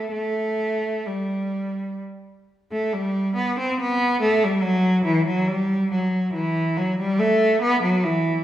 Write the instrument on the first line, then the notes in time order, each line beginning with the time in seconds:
cello
Already playing: A3
0.12 A3
1.06 G3
2.72 A3
2.93 G3
3.35 B3
3.59 C4
3.80 B3
4.21 A3
4.44 G3
4.63 F#3
5.04 E3
5.27 F#3
5.48 G3
5.91 F#3
6.33 E3
6.77 F#3
6.99 G3
7.19 A3
7.62 B3
7.82 F#3
8.04 E3